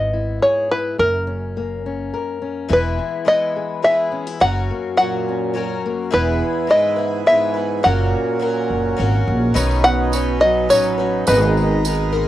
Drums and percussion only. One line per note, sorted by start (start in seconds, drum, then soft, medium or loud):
9.56 tambourine medium
9.71 tambourine soft
9.84 tambourine soft
10.13 tambourine medium
10.70 tambourine medium
11.27 tambourine medium
11.57 tambourine soft
11.85 tambourine medium